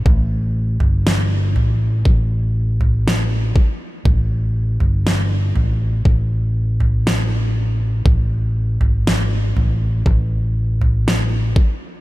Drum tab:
SD |----o-------o---|----o-------o---|----o-------o---|
FT |o--o--o----o----|o--o--o-o--o----|o--o--o-o--o----|
BD |o-------o-----o-|o-------o-------|o-------o-----o-|